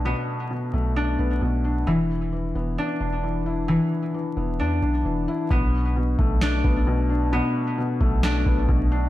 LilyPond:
<<
  \new Staff \with { instrumentName = "Harp" } { \time 4/4 \key b \minor \tempo 4 = 132 <b d'>2 d'2 | e2 d'2 | e2 d'2 | b2 d'2 |
b2 d'2 | }
  \new Staff \with { instrumentName = "Felt piano" } { \time 4/4 \key b \minor <b, b d'>4 b,8 a4 b8 b,8 d'8 | e4 e8 b4 d'8 e8 e'8 | e4 e8 b4 d'8 e8 e'8 | b,4 b,8 a4 b8 b,8 d'8 |
b,4 b,8 a4 b8 b,8 d'8 | }
  \new Staff \with { instrumentName = "808-style bass" } { \clef bass \time 4/4 \key b \minor b,,16 r4 r16 b,,4 b,,8 b,,4 | e,,4. e,,8 r8 e,,4.~ | e,,16 r4 r16 e,,8 e,8 b,,8 e,,8 r8 | b,,4. b,,4 b,,4.~ |
b,,16 r4 r16 b,,4 b,,8 b,,4 | }
  \new DrumStaff \with { instrumentName = "Drums" } \drummode { \time 4/4 r4 r4 r4 r4 | r4 r4 r4 r4 | r4 r4 r4 r4 | bd4 r8 bd8 sn8 bd8 r4 |
r4 r8 bd8 sn8 bd8 bd4 | }
>>